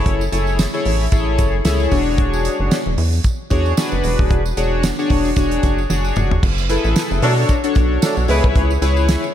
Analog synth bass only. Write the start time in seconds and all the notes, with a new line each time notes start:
0.06 F#1
0.32 F#1
0.86 A1
1.12 A1
1.39 F#1
1.65 C#2
1.92 E1
2.60 F#1
2.86 E1
2.98 E2
3.51 E2
3.92 F#1
4.04 E1
4.19 D#1
4.31 E1
4.57 E1
5.10 E1
5.37 E1
5.64 F#1
5.90 F#1
6.17 F1
6.43 F#1
6.84 A1
7.11 F#1
7.22 B2
7.76 B1
8.17 B1
8.29 C#2
8.44 C2
8.56 C#2
8.82 C#2